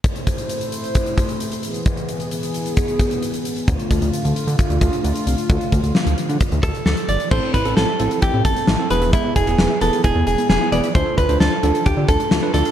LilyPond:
<<
  \new Staff \with { instrumentName = "Clean electric guitar" } { \time 4/4 \key a \minor \tempo 4 = 132 r1 | r1 | r1 | r2 r8 a'8 a'8 d''8 |
c''8 b'8 a'4 g'8 a'4 b'8 | e'8 gis'4 a'8 gis'8 gis'8 gis'8 d''8 | c''8 b'8 a'4 g'8 a'4 a'8 | }
  \new Staff \with { instrumentName = "Synth pluck" } { \time 4/4 \key a \minor r1 | r1 | r1 | r1 |
a16 c'16 e'16 a'16 c''16 e''16 c''16 a'16 e'16 c'16 a16 c'16 e'16 a'16 b'16 e''16 | gis16 b16 e'16 gis'16 b'16 e''16 b'16 gis'16 e'16 b16 gis16 b16 e'16 gis'16 b'16 e''16 | a16 d'16 f'16 a'16 d''16 f''16 d''16 a'16 f'16 d'16 a16 d'16 f'16 a'16 d''16 f''16 | }
  \new Staff \with { instrumentName = "Tine electric piano" } { \time 4/4 \key a \minor r1 | r1 | r1 | r1 |
<c' e' a'>8 r16 <c' e' a'>8 r16 <c' e' a'>4~ <c' e' a'>16 r8 <c' e' a'>16 <b e' gis'>8~ | <b e' gis'>8 r16 <b e' gis'>8 r16 <b e' gis'>4~ <b e' gis'>16 r8 <b e' gis'>16 <b e' gis'>16 r16 | <d' f' a'>8 r16 <d' f' c''>8 r16 <d' f' a'>4~ <d' f' a'>16 r8 <d' f' b'>16 <d' f' a'>16 r16 | }
  \new Staff \with { instrumentName = "Analog synth pad" } { \time 4/4 \key a \minor <a e' c''>2.~ <a e' c''>8 <e b gis'>8~ | <e b gis'>1 | <d a f'>1~ | <d a f'>1 |
r1 | r1 | r1 | }
  \new Staff \with { instrumentName = "Analog synth bass" } { \clef bass \time 4/4 \key a \minor r1 | r1 | d,16 r16 d,16 d,16 r16 d,16 r16 d16 r16 d,16 d,16 r16 d,16 r16 c,16 r16 | d,16 r16 d,16 d,16 r16 d,16 r16 d16 r16 d,16 d,16 r16 d,16 r16 g,,16 r16 |
a,,16 r16 a,,16 a,,16 a,,16 r16 a,,16 r16 a,,16 a,16 a,,16 r16 a,,16 r16 e,,8~ | e,,16 r16 e,,16 e,,16 e,,16 r16 e,,16 r16 e,,16 e,16 e,,16 r16 e,,16 r16 e,,16 r16 | d,16 r16 d,16 d,16 d,16 r16 d,16 r16 d,16 d16 d,16 r16 d,16 r16 d,16 r16 | }
  \new DrumStaff \with { instrumentName = "Drums" } \drummode { \time 4/4 <hh bd>16 hh16 <hh bd>16 hh16 hh16 hh16 hh16 hh16 <hh bd>16 hh16 <hh bd>16 hh16 hh16 hh16 hh16 hh16 | <hh bd>16 hh16 hh16 hh16 hh16 hh16 hh16 hh16 <hh bd>16 hh16 <hh bd>16 hh16 hh16 hh16 hh16 hh16 | <hh bd>16 hh16 <hh bd>16 hh16 hh16 hh16 hh16 hh16 <hh bd>16 hh16 <hh bd>16 hh16 hh16 hh16 hh16 hh16 | <hh bd>16 hh16 <hh bd>16 hh16 sn16 hh16 hh16 hh16 <hh bd>16 hh16 <hh bd>16 hh16 sn16 hh16 hh16 hh16 |
<cymc bd>8 <hh bd>16 hh16 sn8 hh16 hh16 <hh bd>8 <hh bd>16 hh16 sn8 hh16 hh16 | <hh bd>8 <hh bd>16 hh16 sn8 hh16 hh16 <hh bd>8 hh16 hh16 sn8 hh16 hh16 | <hh bd>8 <hh bd>16 hh16 sn8 hh16 hh16 <hh bd>8 <hh bd>16 hh16 sn8 hh16 hh16 | }
>>